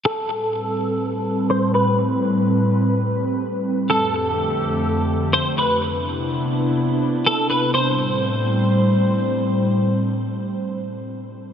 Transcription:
0.05 3.86 A2 medium
0.05 3.86 G3 medium
0.05 3.86 C4 medium
0.05 1.46 A4 medium
0.05 3.86 B4 medium
1.50 1.73 C5 medium
1.74 1.97 B4 medium
3.90 5.80 F2 medium
3.90 5.80 D3 medium
3.90 5.80 A3 medium
3.90 5.80 G4 medium
3.90 5.30 A4 medium
5.33 5.56 C5 medium
5.58 5.81 B4 medium
5.82 7.72 C3 medium
5.82 7.72 B3 medium
5.82 7.72 D4 medium
5.82 7.72 E4 medium
7.26 7.49 A4 medium
7.50 7.73 B4 medium
7.74 11.53 A2 medium
7.74 11.53 G3 medium
7.74 11.53 C4 medium
7.74 11.53 C5 medium
7.74 9.14 C5 medium

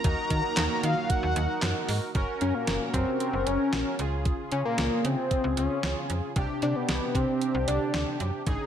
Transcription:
0.00 0.85 A#5 loud
0.04 0.16 D#2 loud
0.04 2.13 D#3 medium
0.04 2.13 F#3 medium
0.04 2.13 A#3 medium
0.04 2.11 D#4 medium
0.04 2.13 F#4 medium
0.04 2.11 F#4 medium
0.04 2.11 A#4 medium
0.04 kick loud
0.04 closed hi-hat medium
0.30 0.42 D#3 loud
0.30 kick medium
0.30 closed hi-hat medium
0.57 0.68 D#2 loud
0.57 snare loud
0.57 clap loud
0.57 closed hi-hat medium
0.83 0.95 D#3 medium
0.83 1.11 F5 medium
0.83 closed hi-hat medium
1.10 1.89 F#5 medium
1.10 kick medium
1.10 closed hi-hat medium
1.23 1.34 D#2 loud
1.36 1.47 D#2 loud
1.36 closed hi-hat medium
1.62 1.73 F#2 medium
1.62 snare loud
1.62 clap medium
1.62 closed hi-hat medium
1.89 2.00 G#2 loud
1.89 open hi-hat medium
2.15 2.26 F#1 loud
2.15 3.95 C#4 medium
2.15 3.95 F#4 medium
2.15 3.95 A#4 medium
2.15 kick loud
2.15 closed hi-hat medium
2.41 2.52 F#2 medium
2.41 2.56 C#4 loud
2.41 closed hi-hat medium
2.54 2.93 A#3 loud
2.67 2.79 F#1 loud
2.67 snare loud
2.67 closed hi-hat medium
2.94 3.05 F#2 loud
2.94 3.18 C4 loud
2.94 kick medium
2.94 closed hi-hat medium
3.20 3.48 C4 loud
3.20 closed hi-hat medium
3.33 3.44 F#1 medium
3.46 3.58 F#1 loud
3.46 3.99 C#4 loud
3.46 closed hi-hat medium
3.73 3.84 A#1 medium
3.73 snare loud
3.73 closed hi-hat medium
3.99 4.33 C#2 loud
3.99 6.32 C#3 medium
3.99 6.32 F4 medium
3.99 6.32 G#4 medium
3.99 closed hi-hat medium
4.25 kick loud
4.25 closed hi-hat medium
4.52 4.63 C#3 medium
4.52 4.64 C#4 loud
4.52 closed hi-hat medium
4.65 5.06 A#3 loud
4.78 4.89 C#2 medium
4.78 snare loud
4.78 closed hi-hat medium
5.05 5.16 C#3 loud
5.05 5.57 C4 loud
5.05 closed hi-hat medium
5.31 kick medium
5.31 closed hi-hat medium
5.44 5.55 C#2 loud
5.57 5.68 C#2 medium
5.57 6.06 C#4 loud
5.57 closed hi-hat medium
5.83 5.95 C#2 medium
5.83 snare loud
5.83 closed hi-hat medium
6.10 6.21 F2 medium
6.10 closed hi-hat medium
6.36 6.47 C2 loud
6.36 8.43 C3 medium
6.36 8.43 D4 medium
6.36 8.43 G4 medium
6.36 kick loud
6.36 closed hi-hat medium
6.62 6.74 C3 loud
6.62 6.77 D4 loud
6.62 closed hi-hat medium
6.76 7.17 B3 loud
6.89 7.00 C2 loud
6.89 snare loud
6.89 closed hi-hat medium
7.15 7.26 C3 loud
7.15 7.67 C4 loud
7.15 kick medium
7.15 closed hi-hat medium
7.41 closed hi-hat medium
7.54 7.66 C2 loud
7.68 7.79 C2 loud
7.68 8.17 D4 loud
7.68 closed hi-hat medium
7.94 8.05 D2 loud
7.94 snare loud
7.94 closed hi-hat medium
8.20 8.31 F#2 loud
8.20 closed hi-hat medium
8.46 8.58 G#1 loud
8.46 8.66 C#3 medium
8.46 8.66 D#4 medium
8.46 8.66 G#4 medium
8.46 kick loud
8.46 closed hi-hat medium

